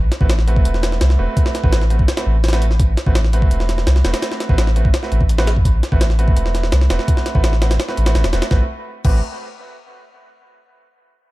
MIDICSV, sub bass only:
0, 0, Header, 1, 2, 480
1, 0, Start_track
1, 0, Tempo, 357143
1, 1837, Time_signature, 4, 2, 24, 8
1, 15207, End_track
2, 0, Start_track
2, 0, Title_t, "Sub bass"
2, 0, Program_c, 0, 38
2, 0, Note_on_c, 0, 33, 81
2, 138, Note_off_c, 0, 33, 0
2, 279, Note_on_c, 0, 33, 102
2, 858, Note_off_c, 0, 33, 0
2, 880, Note_on_c, 0, 28, 88
2, 1340, Note_off_c, 0, 28, 0
2, 1359, Note_on_c, 0, 36, 85
2, 1574, Note_off_c, 0, 36, 0
2, 1600, Note_on_c, 0, 28, 90
2, 1708, Note_off_c, 0, 28, 0
2, 2199, Note_on_c, 0, 33, 102
2, 2779, Note_off_c, 0, 33, 0
2, 3040, Note_on_c, 0, 33, 79
2, 3980, Note_off_c, 0, 33, 0
2, 4119, Note_on_c, 0, 33, 97
2, 4699, Note_off_c, 0, 33, 0
2, 4718, Note_on_c, 0, 28, 91
2, 5179, Note_off_c, 0, 28, 0
2, 5199, Note_on_c, 0, 36, 88
2, 5414, Note_off_c, 0, 36, 0
2, 5439, Note_on_c, 0, 28, 90
2, 5547, Note_off_c, 0, 28, 0
2, 6038, Note_on_c, 0, 33, 98
2, 6618, Note_off_c, 0, 33, 0
2, 6876, Note_on_c, 0, 33, 80
2, 7818, Note_off_c, 0, 33, 0
2, 7958, Note_on_c, 0, 33, 98
2, 8538, Note_off_c, 0, 33, 0
2, 8556, Note_on_c, 0, 28, 87
2, 9018, Note_off_c, 0, 28, 0
2, 9038, Note_on_c, 0, 36, 86
2, 9254, Note_off_c, 0, 36, 0
2, 9278, Note_on_c, 0, 28, 89
2, 9387, Note_off_c, 0, 28, 0
2, 9878, Note_on_c, 0, 33, 95
2, 10458, Note_off_c, 0, 33, 0
2, 10720, Note_on_c, 0, 33, 79
2, 10951, Note_off_c, 0, 33, 0
2, 10959, Note_on_c, 0, 33, 107
2, 11067, Note_off_c, 0, 33, 0
2, 11082, Note_on_c, 0, 28, 86
2, 11187, Note_off_c, 0, 28, 0
2, 11200, Note_on_c, 0, 28, 102
2, 11308, Note_off_c, 0, 28, 0
2, 11438, Note_on_c, 0, 33, 102
2, 11573, Note_off_c, 0, 33, 0
2, 12158, Note_on_c, 0, 33, 98
2, 12381, Note_off_c, 0, 33, 0
2, 15207, End_track
0, 0, End_of_file